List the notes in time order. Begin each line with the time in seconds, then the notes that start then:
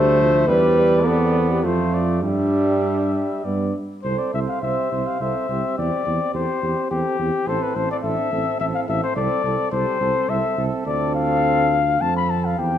Already playing: D2 G3 A3 C5 E5
0.21 F3
0.48 E2 G3 B4 D5
0.78 G3
1.05 B3 C4 A4
1.50 G4
1.64 F2 A3 F4 C5
1.94 D5
2.23 G2 G3 D4 E5
3.45 G2 B3 D5
4.03 C2 C4 A4 C5
4.19 D5
4.33 C2 C4 C5 E5
4.48 F5
4.62 C2 C4 G4 C5 E5
4.92 C2 C4 C5
5.07 F5
5.20 C2 C4 A4 C5 E5
5.49 C2 C4 G4 C5
5.78 E2 C4 G4 D5
6.05 E2 C4 G4
6.34 E2 C4 G4 A4 C5
6.62 E2 C4 G4
6.91 E2 C4 G4 A4
7.19 E2 C4 G4
7.47 A1 C4 E4 A4 C5
7.62 B4
7.75 A1 C4 A4 C5
7.91 D5
8.03 A1 C4 D4 A4 E5
8.32 A1 C4 A4
8.60 A1 C4 E4 A4 E5
8.74 F5
8.88 A1 C4 A4 E5
9.04 C5
9.16 C2 C4 A4 D5
9.44 C2 C4 A4
9.72 C2 C4 G4 A4 C5
10.00 C2 C4 A4
10.29 C2 C4 A4 E5
10.58 C2 C4 A4
10.86 D2 C4 F4 A4 D5
11.15 F5
12.01 F2 C4 F4 A4 A5
12.17 B5
12.30 A5
12.45 F5
12.59 E2 C4 G4 G5